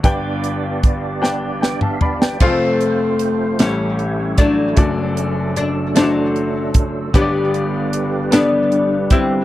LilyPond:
<<
  \new Staff \with { instrumentName = "Tonewheel organ" } { \time 6/8 \key g \mixolydian \tempo 4. = 51 << { r2 <d'' g''>16 <e'' f''>16 d''16 g''16~ | g''16 r2 r8. | r2. | r2. | } \\ { <b d' g' des'' d''>2. | <a c' f' c''>4. <a b e' a' cis''>4. | <fis a d' g' a'>2. | <d g g' b'>2. | } >> }
  \new Staff \with { instrumentName = "Grand piano" } { \time 6/8 \key g \mixolydian << { r2 <b' g''>16 a''16 <d'' b''>16 <b' g''>16~ | <b' g''>16 r2 r8. | r2. | r2. | } \\ { <d' g' b' g''>4 r8 <d' g' b' g''>4 r8 | <c' f' aes' a' f''>4 r8 <a e' g' c'' cis''>4 r8 | <a d' fis' d''>4 r8 <a d' e' fis' c''>4 r8 | <b d' g' des'' d''>4 r8 <b d' g' a'>4 r8 | } >> }
  \new Staff \with { instrumentName = "Grand piano" } { \clef bass \time 6/8 \key g \mixolydian <g,, g,>2. | <f,, f,>4. <a,, a,>4. | <fis,, fis,>2. | <g,, g,>2. | }
  \new Staff \with { instrumentName = "Oud" } { \time 6/8 \key g \mixolydian r2. | f'4. cis'4 d'8~ | d'4 d'8 d'4 r8 | g'4. d'4 e'8 | }
  \new Staff \with { instrumentName = "Oud" } { \time 6/8 \key g \mixolydian r2. | <a c'>4. <e g>4 <fis a>8~ | <fis a>4 r8 <fis a>4. | <b d'>4. <g b>4 <g c'>8 | }
  \new DrumStaff \with { instrumentName = "Drums" } \drummode { \time 6/8 <hh bd>8 hh8 <hh bd>8 sn8 sn16 toml16 tomfh16 sn16 | <cymc bd>8 hh8 hh8 <hh sn>8 hh8 <hh bd>8 | <hh bd>8 hh8 hh8 <hh sn>8 hh8 <hh bd>8 | <hh bd>8 hh8 hh8 <hh sn>8 hh8 <hh bd>8 | }
>>